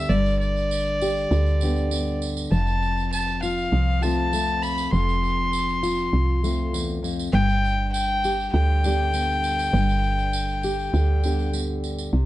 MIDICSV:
0, 0, Header, 1, 5, 480
1, 0, Start_track
1, 0, Tempo, 601805
1, 84, Time_signature, 4, 2, 24, 8
1, 9776, End_track
2, 0, Start_track
2, 0, Title_t, "Fiddle"
2, 0, Program_c, 0, 110
2, 0, Note_on_c, 0, 76, 88
2, 76, Note_on_c, 0, 74, 83
2, 88, Note_off_c, 0, 76, 0
2, 315, Note_off_c, 0, 74, 0
2, 319, Note_on_c, 0, 74, 80
2, 1732, Note_off_c, 0, 74, 0
2, 2010, Note_on_c, 0, 81, 87
2, 2457, Note_off_c, 0, 81, 0
2, 2495, Note_on_c, 0, 81, 86
2, 2715, Note_off_c, 0, 81, 0
2, 2734, Note_on_c, 0, 77, 84
2, 3211, Note_on_c, 0, 81, 94
2, 3223, Note_off_c, 0, 77, 0
2, 3690, Note_on_c, 0, 83, 94
2, 3702, Note_off_c, 0, 81, 0
2, 3925, Note_on_c, 0, 84, 98
2, 3937, Note_off_c, 0, 83, 0
2, 5368, Note_off_c, 0, 84, 0
2, 5844, Note_on_c, 0, 79, 115
2, 6295, Note_off_c, 0, 79, 0
2, 6324, Note_on_c, 0, 79, 99
2, 6774, Note_off_c, 0, 79, 0
2, 6800, Note_on_c, 0, 79, 100
2, 9166, Note_off_c, 0, 79, 0
2, 9776, End_track
3, 0, Start_track
3, 0, Title_t, "Nylon-string guitar"
3, 0, Program_c, 1, 24
3, 0, Note_on_c, 1, 50, 61
3, 81, Note_on_c, 1, 43, 67
3, 815, Note_on_c, 1, 67, 61
3, 1044, Note_off_c, 1, 50, 0
3, 1052, Note_on_c, 1, 50, 59
3, 1290, Note_off_c, 1, 67, 0
3, 1298, Note_on_c, 1, 59, 55
3, 1304, Note_on_c, 1, 62, 54
3, 1309, Note_on_c, 1, 67, 63
3, 1525, Note_off_c, 1, 59, 0
3, 1534, Note_on_c, 1, 59, 57
3, 1976, Note_off_c, 1, 43, 0
3, 1982, Note_off_c, 1, 59, 0
3, 1987, Note_off_c, 1, 62, 0
3, 1989, Note_off_c, 1, 67, 0
3, 2009, Note_on_c, 1, 41, 65
3, 2010, Note_off_c, 1, 50, 0
3, 2736, Note_on_c, 1, 65, 62
3, 2968, Note_on_c, 1, 53, 62
3, 3212, Note_off_c, 1, 65, 0
3, 3214, Note_on_c, 1, 57, 60
3, 3220, Note_on_c, 1, 60, 53
3, 3225, Note_on_c, 1, 65, 60
3, 3445, Note_off_c, 1, 57, 0
3, 3455, Note_on_c, 1, 57, 54
3, 3900, Note_off_c, 1, 53, 0
3, 3901, Note_off_c, 1, 41, 0
3, 3903, Note_off_c, 1, 57, 0
3, 3904, Note_off_c, 1, 60, 0
3, 3908, Note_off_c, 1, 65, 0
3, 3926, Note_on_c, 1, 41, 67
3, 4650, Note_on_c, 1, 65, 68
3, 5130, Note_off_c, 1, 65, 0
3, 5131, Note_on_c, 1, 57, 58
3, 5136, Note_on_c, 1, 60, 55
3, 5141, Note_on_c, 1, 65, 66
3, 5367, Note_off_c, 1, 41, 0
3, 5370, Note_on_c, 1, 40, 64
3, 5602, Note_off_c, 1, 40, 0
3, 5605, Note_on_c, 1, 41, 67
3, 5822, Note_off_c, 1, 57, 0
3, 5824, Note_off_c, 1, 60, 0
3, 5826, Note_off_c, 1, 65, 0
3, 5846, Note_off_c, 1, 41, 0
3, 5849, Note_on_c, 1, 43, 71
3, 6580, Note_on_c, 1, 67, 65
3, 6812, Note_on_c, 1, 50, 59
3, 7059, Note_on_c, 1, 59, 61
3, 7063, Note_on_c, 1, 62, 59
3, 7068, Note_off_c, 1, 67, 0
3, 7071, Note_on_c, 1, 67, 64
3, 7282, Note_off_c, 1, 59, 0
3, 7292, Note_on_c, 1, 59, 56
3, 7738, Note_off_c, 1, 43, 0
3, 7740, Note_off_c, 1, 59, 0
3, 7745, Note_off_c, 1, 62, 0
3, 7767, Note_on_c, 1, 43, 63
3, 8486, Note_off_c, 1, 67, 0
3, 8489, Note_on_c, 1, 67, 59
3, 8710, Note_off_c, 1, 50, 0
3, 8719, Note_on_c, 1, 50, 59
3, 8965, Note_off_c, 1, 67, 0
3, 8967, Note_on_c, 1, 59, 56
3, 8974, Note_on_c, 1, 62, 54
3, 8978, Note_on_c, 1, 67, 64
3, 9190, Note_off_c, 1, 59, 0
3, 9199, Note_on_c, 1, 59, 53
3, 9651, Note_off_c, 1, 59, 0
3, 9652, Note_off_c, 1, 43, 0
3, 9658, Note_off_c, 1, 62, 0
3, 9660, Note_off_c, 1, 67, 0
3, 9674, Note_on_c, 1, 48, 60
3, 9679, Note_off_c, 1, 50, 0
3, 9776, Note_off_c, 1, 48, 0
3, 9776, End_track
4, 0, Start_track
4, 0, Title_t, "FM bass"
4, 0, Program_c, 2, 39
4, 74, Note_on_c, 2, 31, 97
4, 1008, Note_off_c, 2, 31, 0
4, 1045, Note_on_c, 2, 38, 90
4, 1975, Note_off_c, 2, 38, 0
4, 2007, Note_on_c, 2, 29, 97
4, 2936, Note_off_c, 2, 29, 0
4, 2969, Note_on_c, 2, 36, 83
4, 3898, Note_off_c, 2, 36, 0
4, 3929, Note_on_c, 2, 29, 91
4, 4858, Note_off_c, 2, 29, 0
4, 4889, Note_on_c, 2, 36, 76
4, 5817, Note_off_c, 2, 36, 0
4, 5849, Note_on_c, 2, 31, 102
4, 6776, Note_off_c, 2, 31, 0
4, 6809, Note_on_c, 2, 38, 93
4, 7735, Note_off_c, 2, 38, 0
4, 7764, Note_on_c, 2, 31, 105
4, 8691, Note_off_c, 2, 31, 0
4, 8723, Note_on_c, 2, 38, 86
4, 9648, Note_off_c, 2, 38, 0
4, 9675, Note_on_c, 2, 36, 82
4, 9776, Note_off_c, 2, 36, 0
4, 9776, End_track
5, 0, Start_track
5, 0, Title_t, "Drums"
5, 85, Note_on_c, 9, 54, 26
5, 165, Note_off_c, 9, 54, 0
5, 205, Note_on_c, 9, 54, 25
5, 285, Note_off_c, 9, 54, 0
5, 328, Note_on_c, 9, 54, 24
5, 408, Note_off_c, 9, 54, 0
5, 447, Note_on_c, 9, 54, 26
5, 526, Note_off_c, 9, 54, 0
5, 567, Note_on_c, 9, 54, 90
5, 647, Note_off_c, 9, 54, 0
5, 689, Note_on_c, 9, 54, 26
5, 769, Note_off_c, 9, 54, 0
5, 808, Note_on_c, 9, 54, 70
5, 888, Note_off_c, 9, 54, 0
5, 930, Note_on_c, 9, 54, 26
5, 1010, Note_off_c, 9, 54, 0
5, 1046, Note_on_c, 9, 54, 26
5, 1126, Note_off_c, 9, 54, 0
5, 1166, Note_on_c, 9, 54, 20
5, 1246, Note_off_c, 9, 54, 0
5, 1283, Note_on_c, 9, 54, 64
5, 1363, Note_off_c, 9, 54, 0
5, 1405, Note_on_c, 9, 54, 26
5, 1485, Note_off_c, 9, 54, 0
5, 1525, Note_on_c, 9, 54, 87
5, 1605, Note_off_c, 9, 54, 0
5, 1650, Note_on_c, 9, 54, 24
5, 1730, Note_off_c, 9, 54, 0
5, 1769, Note_on_c, 9, 54, 71
5, 1849, Note_off_c, 9, 54, 0
5, 1889, Note_on_c, 9, 54, 70
5, 1969, Note_off_c, 9, 54, 0
5, 2010, Note_on_c, 9, 54, 26
5, 2090, Note_off_c, 9, 54, 0
5, 2128, Note_on_c, 9, 54, 25
5, 2208, Note_off_c, 9, 54, 0
5, 2252, Note_on_c, 9, 54, 22
5, 2332, Note_off_c, 9, 54, 0
5, 2372, Note_on_c, 9, 54, 25
5, 2452, Note_off_c, 9, 54, 0
5, 2493, Note_on_c, 9, 54, 91
5, 2573, Note_off_c, 9, 54, 0
5, 2615, Note_on_c, 9, 54, 25
5, 2695, Note_off_c, 9, 54, 0
5, 2732, Note_on_c, 9, 54, 67
5, 2812, Note_off_c, 9, 54, 0
5, 2854, Note_on_c, 9, 54, 24
5, 2933, Note_off_c, 9, 54, 0
5, 3212, Note_on_c, 9, 54, 61
5, 3292, Note_off_c, 9, 54, 0
5, 3454, Note_on_c, 9, 54, 82
5, 3534, Note_off_c, 9, 54, 0
5, 3694, Note_on_c, 9, 54, 66
5, 3774, Note_off_c, 9, 54, 0
5, 3812, Note_on_c, 9, 54, 62
5, 3891, Note_off_c, 9, 54, 0
5, 3936, Note_on_c, 9, 54, 22
5, 4015, Note_off_c, 9, 54, 0
5, 4057, Note_on_c, 9, 54, 23
5, 4137, Note_off_c, 9, 54, 0
5, 4177, Note_on_c, 9, 54, 21
5, 4257, Note_off_c, 9, 54, 0
5, 4412, Note_on_c, 9, 54, 80
5, 4492, Note_off_c, 9, 54, 0
5, 4539, Note_on_c, 9, 54, 25
5, 4619, Note_off_c, 9, 54, 0
5, 4653, Note_on_c, 9, 54, 65
5, 4733, Note_off_c, 9, 54, 0
5, 4775, Note_on_c, 9, 54, 26
5, 4855, Note_off_c, 9, 54, 0
5, 5136, Note_on_c, 9, 54, 60
5, 5216, Note_off_c, 9, 54, 0
5, 5377, Note_on_c, 9, 54, 82
5, 5457, Note_off_c, 9, 54, 0
5, 5496, Note_on_c, 9, 54, 21
5, 5576, Note_off_c, 9, 54, 0
5, 5617, Note_on_c, 9, 54, 57
5, 5696, Note_off_c, 9, 54, 0
5, 5738, Note_on_c, 9, 54, 64
5, 5818, Note_off_c, 9, 54, 0
5, 5977, Note_on_c, 9, 54, 23
5, 6057, Note_off_c, 9, 54, 0
5, 6096, Note_on_c, 9, 54, 23
5, 6176, Note_off_c, 9, 54, 0
5, 6334, Note_on_c, 9, 54, 84
5, 6414, Note_off_c, 9, 54, 0
5, 6573, Note_on_c, 9, 54, 65
5, 6653, Note_off_c, 9, 54, 0
5, 6695, Note_on_c, 9, 54, 25
5, 6775, Note_off_c, 9, 54, 0
5, 7052, Note_on_c, 9, 54, 65
5, 7132, Note_off_c, 9, 54, 0
5, 7286, Note_on_c, 9, 54, 82
5, 7366, Note_off_c, 9, 54, 0
5, 7410, Note_on_c, 9, 54, 23
5, 7490, Note_off_c, 9, 54, 0
5, 7528, Note_on_c, 9, 54, 61
5, 7607, Note_off_c, 9, 54, 0
5, 7651, Note_on_c, 9, 54, 64
5, 7731, Note_off_c, 9, 54, 0
5, 7771, Note_on_c, 9, 54, 26
5, 7850, Note_off_c, 9, 54, 0
5, 7890, Note_on_c, 9, 54, 27
5, 7970, Note_off_c, 9, 54, 0
5, 8007, Note_on_c, 9, 54, 22
5, 8087, Note_off_c, 9, 54, 0
5, 8126, Note_on_c, 9, 54, 24
5, 8205, Note_off_c, 9, 54, 0
5, 8241, Note_on_c, 9, 54, 89
5, 8321, Note_off_c, 9, 54, 0
5, 8362, Note_on_c, 9, 54, 27
5, 8441, Note_off_c, 9, 54, 0
5, 8481, Note_on_c, 9, 54, 66
5, 8561, Note_off_c, 9, 54, 0
5, 8606, Note_on_c, 9, 54, 25
5, 8686, Note_off_c, 9, 54, 0
5, 8727, Note_on_c, 9, 54, 27
5, 8807, Note_off_c, 9, 54, 0
5, 8962, Note_on_c, 9, 54, 70
5, 9041, Note_off_c, 9, 54, 0
5, 9084, Note_on_c, 9, 54, 25
5, 9163, Note_off_c, 9, 54, 0
5, 9200, Note_on_c, 9, 54, 88
5, 9280, Note_off_c, 9, 54, 0
5, 9440, Note_on_c, 9, 54, 59
5, 9520, Note_off_c, 9, 54, 0
5, 9559, Note_on_c, 9, 54, 69
5, 9639, Note_off_c, 9, 54, 0
5, 9776, End_track
0, 0, End_of_file